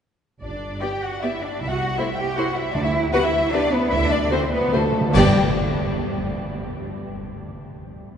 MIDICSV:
0, 0, Header, 1, 8, 480
1, 0, Start_track
1, 0, Key_signature, 1, "major"
1, 0, Tempo, 388601
1, 516, Time_signature, 3, 2, 24, 8
1, 5330, Tempo, 409277
1, 7730, Tempo, 372208
1, 10070, End_track
2, 0, Start_track
2, 0, Title_t, "Violin section"
2, 0, Program_c, 0, 48
2, 511, Note_on_c, 0, 74, 51
2, 972, Note_off_c, 0, 74, 0
2, 1005, Note_on_c, 0, 79, 58
2, 1263, Note_off_c, 0, 79, 0
2, 1278, Note_on_c, 0, 78, 52
2, 1516, Note_on_c, 0, 76, 57
2, 1523, Note_off_c, 0, 78, 0
2, 1757, Note_on_c, 0, 74, 53
2, 1759, Note_off_c, 0, 76, 0
2, 1987, Note_off_c, 0, 74, 0
2, 1997, Note_on_c, 0, 76, 66
2, 2093, Note_on_c, 0, 78, 60
2, 2103, Note_off_c, 0, 76, 0
2, 2444, Note_on_c, 0, 76, 64
2, 2452, Note_off_c, 0, 78, 0
2, 2683, Note_on_c, 0, 79, 65
2, 2694, Note_off_c, 0, 76, 0
2, 2931, Note_off_c, 0, 79, 0
2, 2931, Note_on_c, 0, 78, 59
2, 3168, Note_on_c, 0, 76, 68
2, 3169, Note_off_c, 0, 78, 0
2, 3381, Note_on_c, 0, 74, 80
2, 3396, Note_off_c, 0, 76, 0
2, 3500, Note_on_c, 0, 76, 67
2, 3503, Note_off_c, 0, 74, 0
2, 3598, Note_off_c, 0, 76, 0
2, 3857, Note_on_c, 0, 78, 83
2, 3986, Note_off_c, 0, 78, 0
2, 3993, Note_on_c, 0, 76, 79
2, 4367, Note_off_c, 0, 76, 0
2, 4374, Note_on_c, 0, 74, 86
2, 4614, Note_off_c, 0, 74, 0
2, 4622, Note_on_c, 0, 71, 78
2, 4841, Note_on_c, 0, 76, 96
2, 4849, Note_off_c, 0, 71, 0
2, 5078, Note_off_c, 0, 76, 0
2, 5085, Note_on_c, 0, 74, 80
2, 5329, Note_on_c, 0, 72, 76
2, 5332, Note_off_c, 0, 74, 0
2, 5575, Note_off_c, 0, 72, 0
2, 5583, Note_on_c, 0, 71, 68
2, 5822, Note_off_c, 0, 71, 0
2, 5823, Note_on_c, 0, 69, 67
2, 6308, Note_off_c, 0, 69, 0
2, 6317, Note_on_c, 0, 79, 76
2, 6571, Note_off_c, 0, 79, 0
2, 10070, End_track
3, 0, Start_track
3, 0, Title_t, "Violin section"
3, 0, Program_c, 1, 48
3, 1010, Note_on_c, 1, 74, 40
3, 1109, Note_off_c, 1, 74, 0
3, 1516, Note_on_c, 1, 74, 39
3, 1615, Note_off_c, 1, 74, 0
3, 2453, Note_on_c, 1, 72, 49
3, 2552, Note_off_c, 1, 72, 0
3, 2939, Note_on_c, 1, 72, 50
3, 3038, Note_off_c, 1, 72, 0
3, 3860, Note_on_c, 1, 71, 64
3, 3959, Note_off_c, 1, 71, 0
3, 4363, Note_on_c, 1, 71, 55
3, 4462, Note_off_c, 1, 71, 0
3, 5334, Note_on_c, 1, 72, 66
3, 5428, Note_off_c, 1, 72, 0
3, 5817, Note_on_c, 1, 72, 57
3, 5911, Note_off_c, 1, 72, 0
3, 6303, Note_on_c, 1, 74, 74
3, 6564, Note_off_c, 1, 74, 0
3, 10070, End_track
4, 0, Start_track
4, 0, Title_t, "Cello section"
4, 0, Program_c, 2, 48
4, 513, Note_on_c, 2, 62, 53
4, 972, Note_off_c, 2, 62, 0
4, 1000, Note_on_c, 2, 67, 62
4, 1258, Note_on_c, 2, 66, 56
4, 1261, Note_off_c, 2, 67, 0
4, 1513, Note_off_c, 2, 66, 0
4, 1513, Note_on_c, 2, 64, 63
4, 1753, Note_off_c, 2, 64, 0
4, 1754, Note_on_c, 2, 62, 62
4, 1984, Note_on_c, 2, 64, 73
4, 1986, Note_off_c, 2, 62, 0
4, 2098, Note_on_c, 2, 66, 69
4, 2099, Note_off_c, 2, 64, 0
4, 2446, Note_on_c, 2, 64, 78
4, 2448, Note_off_c, 2, 66, 0
4, 2545, Note_off_c, 2, 64, 0
4, 2699, Note_on_c, 2, 67, 74
4, 2932, Note_on_c, 2, 66, 68
4, 2934, Note_off_c, 2, 67, 0
4, 3165, Note_on_c, 2, 64, 75
4, 3169, Note_off_c, 2, 66, 0
4, 3391, Note_on_c, 2, 62, 82
4, 3395, Note_off_c, 2, 64, 0
4, 3438, Note_off_c, 2, 62, 0
4, 3504, Note_on_c, 2, 64, 87
4, 3859, Note_off_c, 2, 64, 0
4, 3864, Note_on_c, 2, 66, 98
4, 3916, Note_off_c, 2, 66, 0
4, 3983, Note_on_c, 2, 64, 86
4, 4355, Note_off_c, 2, 64, 0
4, 4357, Note_on_c, 2, 62, 92
4, 4603, Note_on_c, 2, 59, 91
4, 4605, Note_off_c, 2, 62, 0
4, 4829, Note_on_c, 2, 64, 105
4, 4840, Note_off_c, 2, 59, 0
4, 5072, Note_off_c, 2, 64, 0
4, 5075, Note_on_c, 2, 62, 84
4, 5328, Note_off_c, 2, 62, 0
4, 5330, Note_on_c, 2, 60, 93
4, 5424, Note_off_c, 2, 60, 0
4, 5576, Note_on_c, 2, 59, 82
4, 5818, Note_off_c, 2, 59, 0
4, 5820, Note_on_c, 2, 57, 73
4, 6306, Note_off_c, 2, 57, 0
4, 6307, Note_on_c, 2, 55, 84
4, 6566, Note_off_c, 2, 55, 0
4, 10070, End_track
5, 0, Start_track
5, 0, Title_t, "Viola section"
5, 0, Program_c, 3, 48
5, 1006, Note_on_c, 3, 67, 38
5, 1008, Note_on_c, 3, 59, 39
5, 1105, Note_off_c, 3, 67, 0
5, 1107, Note_off_c, 3, 59, 0
5, 1519, Note_on_c, 3, 67, 41
5, 1522, Note_on_c, 3, 59, 44
5, 1617, Note_off_c, 3, 67, 0
5, 1621, Note_off_c, 3, 59, 0
5, 2453, Note_on_c, 3, 57, 42
5, 2453, Note_on_c, 3, 64, 43
5, 2552, Note_off_c, 3, 57, 0
5, 2552, Note_off_c, 3, 64, 0
5, 2937, Note_on_c, 3, 57, 52
5, 2940, Note_on_c, 3, 64, 51
5, 3036, Note_off_c, 3, 57, 0
5, 3039, Note_off_c, 3, 64, 0
5, 3865, Note_on_c, 3, 67, 59
5, 3867, Note_on_c, 3, 59, 55
5, 3964, Note_off_c, 3, 67, 0
5, 3965, Note_off_c, 3, 59, 0
5, 4367, Note_on_c, 3, 67, 67
5, 4368, Note_on_c, 3, 59, 58
5, 4466, Note_off_c, 3, 59, 0
5, 4466, Note_off_c, 3, 67, 0
5, 5321, Note_on_c, 3, 66, 59
5, 5323, Note_on_c, 3, 57, 57
5, 5415, Note_off_c, 3, 66, 0
5, 5418, Note_off_c, 3, 57, 0
5, 5825, Note_on_c, 3, 57, 59
5, 5826, Note_on_c, 3, 66, 57
5, 5919, Note_off_c, 3, 57, 0
5, 5919, Note_off_c, 3, 66, 0
5, 6305, Note_on_c, 3, 59, 72
5, 6308, Note_on_c, 3, 67, 75
5, 6565, Note_off_c, 3, 59, 0
5, 6566, Note_off_c, 3, 67, 0
5, 10070, End_track
6, 0, Start_track
6, 0, Title_t, "Timpani"
6, 0, Program_c, 4, 47
6, 3392, Note_on_c, 4, 50, 69
6, 4067, Note_off_c, 4, 50, 0
6, 4831, Note_on_c, 4, 50, 33
6, 4901, Note_off_c, 4, 50, 0
6, 5008, Note_on_c, 4, 50, 36
6, 5088, Note_off_c, 4, 50, 0
6, 5102, Note_on_c, 4, 50, 42
6, 5184, Note_off_c, 4, 50, 0
6, 5199, Note_on_c, 4, 50, 44
6, 5274, Note_off_c, 4, 50, 0
6, 5289, Note_on_c, 4, 50, 44
6, 5374, Note_off_c, 4, 50, 0
6, 5388, Note_on_c, 4, 50, 48
6, 5465, Note_off_c, 4, 50, 0
6, 5479, Note_on_c, 4, 50, 53
6, 5556, Note_off_c, 4, 50, 0
6, 5570, Note_on_c, 4, 50, 57
6, 5654, Note_off_c, 4, 50, 0
6, 5668, Note_on_c, 4, 50, 63
6, 5744, Note_off_c, 4, 50, 0
6, 5758, Note_on_c, 4, 50, 68
6, 5841, Note_off_c, 4, 50, 0
6, 5855, Note_on_c, 4, 50, 74
6, 5932, Note_off_c, 4, 50, 0
6, 5947, Note_on_c, 4, 50, 77
6, 6027, Note_off_c, 4, 50, 0
6, 6041, Note_on_c, 4, 50, 91
6, 6130, Note_off_c, 4, 50, 0
6, 6143, Note_on_c, 4, 50, 84
6, 6225, Note_off_c, 4, 50, 0
6, 6299, Note_on_c, 4, 43, 88
6, 6517, Note_off_c, 4, 43, 0
6, 10070, End_track
7, 0, Start_track
7, 0, Title_t, "Double bass section"
7, 0, Program_c, 5, 48
7, 504, Note_on_c, 5, 31, 46
7, 917, Note_off_c, 5, 31, 0
7, 1983, Note_on_c, 5, 36, 58
7, 2372, Note_off_c, 5, 36, 0
7, 3390, Note_on_c, 5, 38, 70
7, 3783, Note_off_c, 5, 38, 0
7, 4836, Note_on_c, 5, 38, 81
7, 5241, Note_off_c, 5, 38, 0
7, 6293, Note_on_c, 5, 43, 85
7, 6558, Note_off_c, 5, 43, 0
7, 10070, End_track
8, 0, Start_track
8, 0, Title_t, "Drums"
8, 6309, Note_on_c, 9, 35, 72
8, 6309, Note_on_c, 9, 49, 72
8, 6427, Note_off_c, 9, 35, 0
8, 6427, Note_off_c, 9, 49, 0
8, 10070, End_track
0, 0, End_of_file